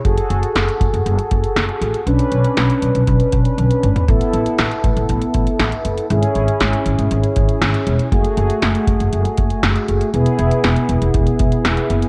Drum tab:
HH |xxxxxxxxxxxxxxxx|xxxxxxxxxxxxxxxx|xxxxxxxxxxxxxxxx|xxxxxxxxxxxxxxxx|
SD |----o-------o---|----o-----------|----o-------o---|----o-------o---|
T1 |----------------|------------o---|----------------|----------------|
T2 |----------------|--------------o-|----------------|----------------|
FT |----------------|---------------o|----------------|----------------|
BD |o-----o---o-----|--------o-o-----|o-----o---o-----|----------o-----|

HH |xxxxxxxxxxxxxxxx|xxxxxxxxxxxxxxxx|
SD |----o-------o---|----o-------o---|
T1 |----------------|----------------|
T2 |----------------|----------------|
FT |----------------|----------------|
BD |o-----o---o-----|--------o-o-----|